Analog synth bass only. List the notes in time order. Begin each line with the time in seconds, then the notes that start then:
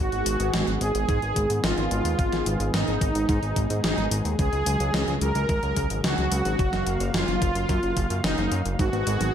0.12 G#1
0.26 G#1
0.40 G#1
0.54 G#1
0.67 G#1
0.81 G#1
0.95 G#1
1.09 G#2
1.22 G#1
1.36 G#1
1.50 G#2
1.64 G#1
1.77 G#1
1.91 G#1
2.05 D#2
2.19 G#1
2.33 G#1
2.46 G#1
2.60 G#1
2.74 G#1
2.88 G#1
3.01 G#1
3.15 G#1
3.29 G#2
3.43 G#1
3.56 G#1
3.70 G#2
3.84 G#1
3.98 G#1
4.11 G#1
4.25 D#2
4.39 C#2
4.53 C#2
4.66 C#2
4.80 C#2
4.94 C#2
5.08 C#2
5.21 C#2
5.35 C#2
5.49 G#1
5.63 C#2
5.77 C#2
5.91 G#1
6.04 C#2
6.18 C#2
6.32 C#2
6.45 G#1
6.59 F#1
6.73 F#1
6.87 F#1
7.00 F#1
7.14 F#1
7.28 F#1
7.42 F#1
7.55 F#1
7.69 F#2
7.83 F#1
7.97 F#1
8.10 F#2
8.24 F#1
8.38 F#1
8.52 F#2
8.66 F#1
8.79 G#1
8.93 G#1
9.07 G#1
9.21 G#1